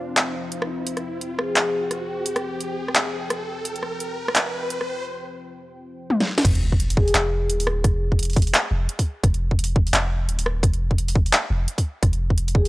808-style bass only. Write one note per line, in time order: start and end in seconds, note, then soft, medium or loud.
0.34 0.50 F1 medium
0.86 1.55 F1 loud
1.91 2.25 D#1 medium
2.26 2.95 F1 loud
3.65 4.34 F1 loud
6.45 7.13 F1 loud
7.14 7.51 F1 medium
7.49 7.83 D#1 loud
7.84 8.53 F1 loud
8.71 8.88 F1 medium
9.23 9.92 F1 loud
9.93 10.30 F1 medium
10.28 10.62 D#1 loud
10.63 11.32 F1 loud
11.50 11.67 F1 medium
12.03 12.69 F1 loud